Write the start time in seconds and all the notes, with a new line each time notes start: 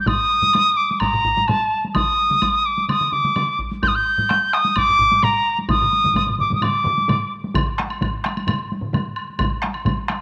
0.00 G6
0.06 D#6, taiko, taiko low-mid, taiko high, high woodblock
0.42 taiko low-mid, taiko high
0.53 taiko high, high woodblock
0.77 D6
0.91 taiko high
1.00 A#5, taiko, taiko low-mid, taiko high, high woodblock
1.13 taiko low-mid
1.25 taiko, taiko low-mid
1.37 taiko low-mid, taiko high
1.47 A5, taiko low-mid, taiko high, high woodblock
1.85 taiko high
1.94 D#6, taiko, taiko mid, taiko high, high woodblock
2.30 taiko mid, taiko high
2.42 taiko, taiko high, high woodblock
2.66 D6
2.78 taiko high
2.88 D#6, taiko mid, taiko high, high woodblock
3.01 taiko mid
3.12 D6, taiko mid
3.24 taiko mid, taiko high
3.36 taiko mid, taiko high, high woodblock
3.59 taiko
3.72 taiko high
3.83 G6, taiko, taiko low-mid, taiko high, high woodblock
3.88 D#6
3.95 G6
4.18 taiko low-mid, taiko high
4.29 taiko rim, taiko high, high woodblock
4.53 D#6, taiko rim
4.65 taiko high
4.76 D6, taiko, taiko low-mid, taiko high, high woodblock
4.89 taiko low-mid
4.99 taiko, taiko low-mid
5.11 taiko low-mid, taiko high
5.23 A#5, taiko low-mid, taiko high, high woodblock
5.59 taiko high
5.69 D#6, taiko, taiko low-mid, taiko mid, taiko high, high woodblock
5.82 taiko low-mid, taiko mid
5.93 taiko high
6.04 taiko low-mid, taiko mid, taiko high
6.14 taiko, taiko low-mid, taiko mid, taiko high, high woodblock
6.27 taiko low-mid, taiko mid
6.39 D6, taiko low-mid, taiko mid
6.50 taiko low-mid, taiko mid, taiko high
6.55 D#6
6.61 D6, taiko low-mid, taiko mid, taiko high, high woodblock
6.84 taiko low-mid, taiko mid
6.98 taiko high
7.08 taiko low-mid, taiko mid, taiko high, high woodblock
7.44 taiko high
7.54 taiko, taiko low-mid, taiko mid, taiko high, high woodblock
7.68 taiko high
7.78 taiko rim, taiko high
7.90 taiko high, high woodblock
8.01 taiko, taiko low-mid, taiko mid, taiko high, high woodblock
8.14 taiko high
8.24 taiko rim, taiko high, high woodblock
8.37 taiko high, high woodblock
8.47 taiko low-mid, taiko mid, taiko high, high woodblock
8.60 taiko high
8.72 taiko high
8.81 taiko low-mid, taiko mid, taiko high
8.93 taiko low-mid, taiko mid, taiko high, high woodblock
9.06 taiko high
9.16 high woodblock
9.30 taiko high
9.39 taiko, taiko low-mid, taiko mid, taiko high, high woodblock
9.52 taiko high
9.62 taiko rim, taiko high
9.74 taiko high, high woodblock
9.85 taiko, taiko low-mid, taiko mid, taiko high, high woodblock
9.99 taiko high
10.08 taiko rim, taiko high, high woodblock